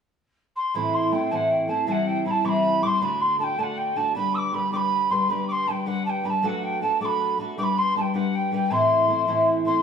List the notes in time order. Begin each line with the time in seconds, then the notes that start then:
0.56 C6
0.74 A2 E3 A3 C4 E4 C5 B5
0.93 C6
1.11 A3 C4 E4 C5 G5
1.26 G5
1.31 A2 E3 A3 C4 E4 C5 A5
1.35 F#5
1.50 G5
1.68 A3 C4 E4 C5 A5
1.87 C3 E3 G3 C4 E4 C5 A5
1.91 F#5
2.07 G5
2.25 G3 C4 E4 C5 B5
2.30 A5
2.44 C3 E3 G3 C4 E4 C5 D6
2.48 B5
2.82 G3 C4 E4 C5 D6
2.86 C6
3.01 D3 A3 D4 F#4 D5 B5
3.20 C6
3.39 A3 D4 F#4 D5 A5
3.43 G5
3.58 D3 A3 D4 F#4 D5 A5
3.63 F#5
3.77 G5
3.96 A3 D4 F#4 D5 A5
4.15 G3 D4 G4 B4 B5
4.34 D6 E6
4.52 G3 D4 G4 B4 B5
4.72 G3 D4 G4 B4 D6
4.76 B5
5.10 G3 D4 G4 B4 C6
5.29 G3 D4 G4 B4 B5
5.48 C6 D6
5.66 G3 D4 G4 B4 G5 A5
5.86 G3 D4 G4 B4 F#5
6.05 G5 A5
6.24 G3 D4 G4 B4 B5
6.29 A5
6.43 F#3 A3 D4 F#4 A4 A5
6.47 F#5
6.63 G5
6.81 A3 D4 F#4 A4 A5
7.00 F#3 A3 D4 F#4 A4 D6
7.05 B5
7.38 A3 D4 F#4 A4
7.58 G3 D4 G4 B4 D6
7.63 B5
7.77 C6
7.95 G3 D4 G4 B4 A5
8.01 G5
8.14 G3 D4 G4 B4 F#5
8.35 G5
8.51 G3 D4 G4 B4 G5
8.70 A2 E3 A3 C4 E4 C5 C6
9.08 A3 C4 E4 C5
9.27 A2 E3 A3 C4 E4 C5
9.65 A3 C4 E4 C5 C6